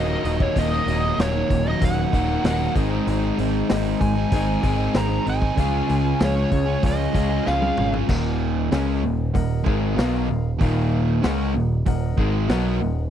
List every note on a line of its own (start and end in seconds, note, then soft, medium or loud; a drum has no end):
0.00 0.16 D#1 medium
0.00 0.40 D#2 medium
0.00 0.40 A#2 loud
0.00 0.25 D#3 medium
0.00 0.55 F#3 medium
0.00 0.25 A#3 medium
0.00 0.24 D#4 medium
0.00 0.23 F#4 medium
0.00 0.43 F#4 medium
0.00 0.43 A#4 medium
0.00 0.42 D#5 medium
0.00 0.43 F5 medium
0.08 0.22 D#3 medium
0.08 0.23 F#3 medium
0.08 0.24 A#3 medium
0.08 0.26 D#4 medium
0.24 0.48 D#1 medium
0.24 0.40 D#3 medium
0.24 0.40 F#3 medium
0.24 0.39 A#3 medium
0.24 0.38 D#4 medium
0.24 0.55 F#4 medium
0.24 open hi-hat medium
0.38 0.56 D#3 medium
0.38 0.56 F#3 medium
0.38 0.57 A#3 medium
0.38 0.58 D#4 medium
0.38 kick medium
0.42 0.58 C#5 medium
0.56 0.79 D#1 medium
0.56 1.17 D#2 medium
0.56 1.17 A#2 medium
0.56 0.86 D#3 loud
0.56 0.87 F#3 medium
0.56 0.88 A#3 loud
0.56 0.90 D#4 loud
0.56 1.06 F#4 medium
0.56 0.86 F#4 medium
0.56 1.06 A#4 medium
0.56 1.06 D#5 medium
0.56 1.21 D#5 medium
0.56 kick loud
0.56 open hi-hat medium
0.72 snare soft
0.87 1.10 D#1 medium
0.87 1.18 D#3 medium
0.87 1.18 F#3 medium
0.87 1.18 A#3 medium
0.87 1.20 D#4 medium
0.87 1.17 F#4 medium
0.87 open hi-hat medium
1.18 1.41 D#1 loud
1.18 1.65 D#2 loud
1.18 1.66 A#2 medium
1.18 1.36 D#3 loud
1.18 1.35 F#3 loud
1.18 1.34 A#3 loud
1.18 1.33 D#4 medium
1.18 1.48 F#4 medium
1.18 1.69 F#4 medium
1.18 1.69 A#4 medium
1.18 1.67 C#5 medium
1.18 1.69 D#5 medium
1.18 snare loud
1.18 open hi-hat medium
1.34 1.50 D#3 medium
1.34 1.50 F#3 medium
1.34 1.50 A#3 medium
1.34 1.52 D#4 medium
1.49 1.73 D#1 medium
1.49 1.79 A#3 soft
1.49 1.79 D#4 medium
1.49 1.80 F#4 medium
1.49 muted overdriven electric guitar stroke soft
1.49 kick medium
1.49 open hi-hat medium
1.66 2.13 D#3 medium
1.66 2.13 F#3 medium
1.66 2.14 A#3 medium
1.66 2.16 D#4 medium
1.66 1.83 D#5 medium
1.80 2.05 D#1 medium
1.80 2.12 D#3 medium
1.80 2.12 A#3 medium
1.80 2.12 D#4 medium
1.80 2.31 F#4 medium
1.80 2.11 F#4 medium
1.80 2.31 A#4 medium
1.80 2.31 D#5 medium
1.80 kick loud
1.80 open hi-hat medium
1.84 2.73 F#5 medium
2.13 2.36 D#1 medium
2.13 2.43 D#2 medium
2.13 2.43 A#2 medium
2.13 2.31 D#3 medium
2.13 2.30 F#3 medium
2.13 2.29 A#3 medium
2.13 2.28 D#4 medium
2.13 kick medium
2.13 open hi-hat medium
2.29 2.44 D#3 medium
2.29 2.45 F#3 medium
2.29 2.45 A#3 medium
2.29 2.45 D#4 medium
2.43 2.67 D#1 medium
2.43 2.74 D#2 medium
2.43 2.74 A#2 loud
2.43 2.61 D#3 medium
2.43 2.59 F#3 loud
2.43 2.59 A#3 loud
2.43 2.57 D#4 loud
2.43 2.75 F#4 medium
2.43 2.74 F#4 medium
2.43 2.75 A#4 medium
2.43 2.74 D#5 medium
2.43 snare loud
2.43 open hi-hat medium
2.59 2.75 D#3 medium
2.59 2.74 F#3 medium
2.59 2.74 A#3 medium
2.59 2.73 D#4 medium
2.75 2.99 G#1 medium
2.75 3.06 G#2 medium
2.75 3.07 D#3 medium
2.75 2.94 G#3 medium
2.75 2.91 C4 medium
2.75 2.89 D#4 medium
2.75 3.07 G#4 medium
2.75 3.51 G#4 medium
2.75 3.51 C5 medium
2.75 3.51 D#5 loud
2.75 kick loud
2.75 open hi-hat medium
2.91 3.08 G#3 medium
2.91 3.08 C4 medium
2.91 3.09 D#4 medium
3.07 3.30 G#1 medium
3.07 3.68 G#2 loud
3.07 3.37 D#3 medium
3.07 3.39 G#3 loud
3.07 3.39 C4 loud
3.07 3.39 D#4 loud
3.07 3.37 G#4 medium
3.07 open hi-hat medium
3.38 3.62 G#1 medium
3.38 3.69 D#3 medium
3.38 3.71 G#3 medium
3.38 3.71 C4 medium
3.38 3.71 D#4 medium
3.38 3.70 G#4 medium
3.38 open hi-hat medium
3.69 3.93 G#1 medium
3.69 4.16 G#2 loud
3.69 4.00 D#3 medium
3.69 3.88 G#3 loud
3.69 3.86 C4 loud
3.69 3.84 D#4 loud
3.69 4.20 G#4 medium
3.69 4.00 G#4 medium
3.69 4.20 C5 medium
3.69 4.20 D#5 medium
3.69 snare loud
3.69 open hi-hat medium
3.86 4.01 G#3 medium
3.86 4.00 C4 medium
3.86 4.01 D#4 medium
4.01 4.24 G#1 medium
4.01 4.32 G#3 soft
4.01 4.32 C4 medium
4.01 4.32 D#4 medium
4.01 4.33 G#4 medium
4.01 4.98 G#5 loud
4.01 muted overdriven electric guitar stroke medium
4.01 kick medium
4.01 open hi-hat medium
4.15 4.62 G#3 medium
4.15 4.63 C4 medium
4.15 4.63 D#4 medium
4.32 4.55 G#1 medium
4.32 4.64 G#2 medium
4.32 4.64 D#3 medium
4.32 4.64 G#3 medium
4.32 4.63 C4 medium
4.32 4.63 D#4 medium
4.32 4.83 G#4 medium
4.32 4.62 G#4 medium
4.32 4.83 C5 medium
4.32 4.83 D#5 medium
4.32 kick loud
4.32 open hi-hat medium
4.62 4.87 G#1 medium
4.62 4.93 D#3 medium
4.62 4.78 G#3 medium
4.62 4.77 C4 medium
4.62 4.76 D#4 medium
4.62 4.95 G#4 medium
4.62 kick medium
4.62 open hi-hat medium
4.66 5.26 G#2 medium
4.66 5.26 D#3 medium
4.77 4.94 G#3 medium
4.77 4.94 C4 medium
4.77 4.95 D#4 medium
4.94 5.18 G#1 medium
4.94 5.42 G#2 medium
4.94 5.24 D#3 loud
4.94 5.10 G#3 loud
4.94 5.09 C4 loud
4.94 5.07 D#4 loud
4.94 5.45 G#4 medium
4.94 5.25 G#4 medium
4.94 5.45 C5 medium
4.94 5.45 D#5 medium
4.94 5.26 A#5 loud
4.94 snare loud
4.94 open hi-hat medium
5.09 5.25 G#3 medium
5.09 5.26 C4 medium
5.09 5.27 D#4 medium
5.25 5.50 G#1 medium
5.25 5.55 D#3 medium
5.25 5.43 G#3 medium
5.25 5.41 C4 medium
5.25 5.39 D#4 medium
5.25 5.58 G#4 medium
5.25 open hi-hat medium
5.29 6.18 G#5 loud
5.41 5.55 G#3 medium
5.41 5.56 C4 medium
5.41 5.55 D#4 medium
5.41 kick medium
5.55 5.81 C#2 medium
5.55 6.18 C#3 medium
5.55 5.90 F3 medium
5.55 5.86 G#3 loud
5.55 5.87 C#4 loud
5.55 5.88 F4 medium
5.55 6.08 G#4 medium
5.55 5.88 G#4 loud
5.55 6.08 C#5 medium
5.55 6.08 F5 medium
5.55 kick medium
5.55 open hi-hat medium
5.87 6.13 C#2 medium
5.87 6.19 G#3 medium
5.87 6.20 C#4 medium
5.87 6.20 F4 medium
5.87 6.21 G#4 medium
5.87 open hi-hat medium
5.91 6.19 G#3 soft
6.19 6.44 C#2 loud
6.19 6.67 C#3 loud
6.19 6.52 F3 medium
6.19 6.50 G#3 medium
6.19 6.38 C#4 loud
6.19 6.37 F4 loud
6.19 6.71 G#4 medium
6.19 6.35 G#4 loud
6.19 6.71 C#5 medium
6.19 6.71 F5 medium
6.19 snare loud
6.19 open hi-hat medium
6.24 6.82 C#5 medium
6.36 6.50 C#4 medium
6.36 6.50 F4 medium
6.36 6.50 G#4 medium
6.51 6.75 C#2 medium
6.51 6.82 G#3 soft
6.51 6.82 F4 medium
6.51 6.82 G#4 medium
6.51 muted overdriven electric guitar stroke soft
6.51 kick medium
6.51 open hi-hat medium
6.66 7.13 C#4 medium
6.66 7.14 F4 medium
6.66 7.14 G#4 medium
6.82 7.07 C#2 medium
6.82 7.14 C#3 medium
6.82 7.15 F3 medium
6.82 7.14 G#3 medium
6.82 7.13 F4 medium
6.82 7.34 G#4 medium
6.82 7.12 G#4 medium
6.82 7.34 C#5 medium
6.82 7.34 F5 medium
6.82 kick loud
6.82 open hi-hat medium
6.86 7.50 D#5 medium
7.12 7.38 C#2 medium
7.12 7.44 C#3 medium
7.12 7.43 G#3 medium
7.12 7.31 C#4 medium
7.12 7.30 F4 medium
7.12 7.28 G#4 medium
7.12 kick medium
7.12 open hi-hat medium
7.30 7.44 C#4 medium
7.30 7.45 F4 medium
7.30 7.46 G#4 medium
7.43 7.92 C#3 loud
7.43 7.78 F3 medium
7.43 7.74 G#3 loud
7.43 7.62 C#4 medium
7.43 7.61 F4 loud
7.43 7.97 G#4 medium
7.43 7.59 G#4 loud
7.43 7.97 C#5 medium
7.43 7.97 F5 medium
7.43 snare medium
7.47 7.70 C#2 medium
7.47 7.91 F5 medium
7.61 7.75 C#4 medium
7.61 7.76 F4 medium
7.61 7.77 G#4 medium
7.61 high tom medium
7.75 8.01 G#1 medium
7.75 8.06 G#3 medium
7.75 7.94 C#4 medium
7.75 7.92 F4 medium
7.75 7.91 G#4 medium
7.75 mid tom medium
7.80 8.11 G#3 soft
7.92 8.08 C#4 medium
7.92 8.08 F4 medium
7.92 8.07 G#4 medium
7.92 floor tom medium
8.07 8.68 D#1 medium
8.07 8.70 D#2 medium
8.07 8.71 A#2 loud
8.07 8.71 D#3 loud
8.07 8.60 A#4 medium
8.07 8.60 D#5 medium
8.07 8.60 F#5 medium
8.07 kick loud
8.07 crash loud
8.71 9.02 C#2 medium
8.71 9.02 C#3 loud
8.71 9.03 G#3 loud
8.71 9.03 C#4 loud
8.71 9.22 A#4 medium
8.71 9.23 D#5 medium
8.71 9.23 G#5 medium
8.71 snare loud
8.71 open hi-hat medium
9.02 9.33 D#1 medium
9.02 9.28 D#2 medium
9.02 9.29 A#2 medium
9.34 9.64 D#1 medium
9.34 9.60 D#2 medium
9.34 9.60 A#2 medium
9.34 9.85 A#4 medium
9.34 9.85 D#5 medium
9.34 9.85 F#5 medium
9.34 kick loud
9.34 open hi-hat medium
9.64 9.96 G#1 medium
9.64 9.95 G#2 medium
9.64 9.95 D#3 medium
9.64 9.96 G#3 medium
9.64 kick loud
9.95 10.27 B1 medium
9.95 10.27 B2 medium
9.95 10.28 F#3 loud
9.95 10.28 B3 loud
9.95 10.48 A#4 medium
9.95 10.48 D#5 medium
9.95 10.48 F5 loud
9.95 snare loud
9.95 open hi-hat medium
10.27 10.59 D#1 medium
10.27 10.54 D#2 medium
10.27 10.54 A#2 medium
10.59 11.20 D#1 medium
10.59 11.22 D#2 loud
10.59 11.21 A#2 medium
10.59 11.22 D#3 loud
10.59 11.11 A#4 medium
10.59 11.11 D#5 medium
10.59 11.11 F5 medium
10.59 kick loud
10.59 open hi-hat medium
11.22 11.54 C#2 medium
11.22 11.53 C#3 loud
11.22 11.54 G#3 loud
11.22 11.54 C#4 loud
11.22 11.74 A#4 medium
11.22 11.74 D#5 medium
11.22 11.74 F#5 medium
11.22 snare loud
11.22 open hi-hat medium
11.54 11.85 D#1 medium
11.54 11.80 D#2 medium
11.54 11.80 A#2 medium
11.86 12.16 D#1 medium
11.86 12.11 D#2 medium
11.86 12.12 A#2 medium
11.86 12.37 A#4 medium
11.86 12.37 D#5 medium
11.86 12.37 F#5 loud
11.86 kick medium
11.86 open hi-hat medium
12.17 12.47 G#1 medium
12.17 12.48 G#2 medium
12.17 12.48 D#3 medium
12.17 12.49 G#3 loud
12.17 kick medium
12.48 12.79 B1 loud
12.48 12.79 B2 loud
12.48 12.79 F#3 loud
12.48 12.80 B3 loud
12.48 13.00 A#4 medium
12.48 13.00 D#5 medium
12.48 13.00 F#5 loud
12.48 snare loud
12.48 open hi-hat medium
12.79 13.10 D#1 medium
12.79 13.05 D#2 medium
12.79 13.05 A#2 medium